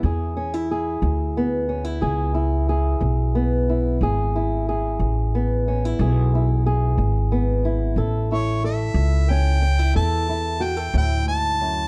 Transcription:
<<
  \new Staff \with { instrumentName = "Harmonica" } { \time 12/8 \key e \mixolydian \tempo 4. = 60 r1. | r1. | r8 cis''8 e''4 g''4 a''4 g''8 g''8 a''4 | }
  \new Staff \with { instrumentName = "Steel-string acoustic guitar" } { \time 12/8 \key e \mixolydian << { gis'8 cis'16 e'16 gis'4 b8 cis'16 e'16 gis'8 e'8 gis'4 b8 e'8 | gis'8 e'8 gis'4 b8 cis'16 e'16 gis'8 e'8 gis'4 b8 e'8 | a'8 e'8 a'4 cis'8 cis'16 e'16 a'8 e'8 fis'16 a'4.~ a'16 | } \\ { e,4 r8 e,4 r8 e,4 r8 e,4 r8 | e,4 r8 e,4 r8 e,4 r8 e,4 r8 | a,4 r8 a,4 r8 a,4 r8 a,8 gis,8 fis,8 | } >> }
  \new Staff \with { instrumentName = "Upright bass" } { \clef bass \time 12/8 \key e \mixolydian e,4. d,4. cis,4. b,,4. | gis,,4. a,,4. b,,4. gis,,4. | a,,4. cis,4. e,4. d,4. | }
>>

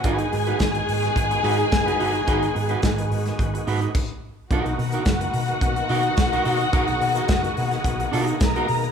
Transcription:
<<
  \new Staff \with { instrumentName = "String section" } { \time 4/4 \key b \major \tempo 4 = 108 <gis' gis''>1~ | <gis' gis''>2~ <gis' gis''>8 r4. | <fis' fis''>1~ | <fis' fis''>2. <ais' ais''>4 | }
  \new Staff \with { instrumentName = "Clean electric guitar" } { \time 4/4 \key b \major <dis' fis' b'>8 r16 <dis' fis' b'>16 r4. <dis' fis' b'>8 r16 <dis' fis' b'>16 <dis' fis' b'>8 | <dis' fis' b'>8 r16 <dis' fis' b'>16 r4. <dis' fis' b'>8 r4 | <dis' fis' ais'>8 r16 <dis' fis' ais'>16 r4. <dis' fis' ais'>8 r16 <dis' fis' ais'>16 <dis' fis' ais'>8 | <dis' fis' ais'>8 r16 <dis' fis' ais'>16 r4. <dis' fis' ais'>8 r16 <dis' fis' ais'>8 r16 | }
  \new Staff \with { instrumentName = "Tonewheel organ" } { \time 4/4 \key b \major fis'1~ | fis'2. r4 | fis'1 | gis'1 | }
  \new Staff \with { instrumentName = "Tonewheel organ" } { \time 4/4 \key b \major <dis gis b>1~ | <dis gis b>2. r4 | <dis ais b>1~ | <dis ais b>1 | }
  \new Staff \with { instrumentName = "Fingered electric bass" } { \clef bass \time 4/4 \key b \major gis,,8 gis,8 gis,,8 gis,8 gis,,8 gis,8 fis,,8 g,,8 | gis,,8 gis,8 gis,,8 gis,8 gis,,8 gis,8 r4 | b,,16 b,,16 b,8 fis,,8 b,8 b,,8 b,8 b,,8 b,8 | b,,16 b,,16 b,8 fis,,8 b,8 b,,8 b,8 b,,8 b,8 | }
  \new DrumStaff \with { instrumentName = "Drums" } \drummode { \time 4/4 <hh bd>16 hh16 hho16 hh16 <hh bd sn>16 hh16 hho16 <hh sn>16 <hh bd>16 hh16 hho16 hh16 <hh bd sn>16 hh16 hho16 hh16 | <hh bd>16 hh16 hho16 hh16 <hh bd sn>16 hh16 hho16 <hh sn>16 <hh bd>16 hh16 hho16 hh16 <cymc bd>4 | <hh bd>16 hh16 hho16 hh16 <hh bd sn>16 hh16 hho16 hh16 <hh bd>16 hh16 hho16 hh16 <hh bd sn>16 hh16 hho16 hh16 | <hh bd>16 hh16 hho16 hh16 <hh bd sn>16 hh16 hho16 <hh sn>16 <hh bd>16 hh16 hho16 hh16 <hh bd sn>16 hh16 hho16 hh16 | }
>>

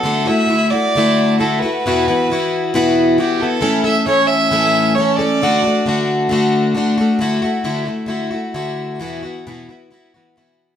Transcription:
<<
  \new Staff \with { instrumentName = "Fiddle" } { \time 4/4 \key d \major \tempo 4 = 134 a'8 e''4 d''4. a'8 b'8~ | b'2~ b'8 r8 g'8 a'8~ | a'8 e''8 cis''8 e''4. cis''8 d''8~ | d''4. r2 r8 |
r1 | r1 | }
  \new Staff \with { instrumentName = "Twelve-string acoustic guitar" } { \time 4/4 \key d \major <d a e' fis'>8 <a e' fis'>8 <d a e' fis'>8 <a e' fis'>8 <d a e' fis'>4 <d a e' fis'>8 <a e' fis'>8 | <e, b, e b e' fis'>8 <e b e' fis'>8 <e b e' fis'>4 <e, b, e b e' fis'>4 <e b e' fis'>8 <e b e' fis'>8 | <a, e a cis' a'>8 <a cis' a'>8 <e a cis' a'>4 <a, e a cis' a'>4 <e a cis' a'>8 <a cis' a'>8 | <d a d' fis'>8 <a d' fis'>8 <d a d' fis'>4 <d a d' fis'>4 <d a d' fis'>8 <a d' fis'>8 |
<d a e' fis'>8 <a e' fis'>8 <d a e' fis'>8 <a e' fis'>8 <d a e' fis'>8 <a e' fis'>8 <d a e' fis'>4 | <e, b, e b e' fis'>8 <e b e' fis'>8 <e, b, e b e' fis'>8 <e b e' fis'>8 <e b e' fis'>8 <e b e' fis'>8 <e, b, e b e' fis'>4 | }
>>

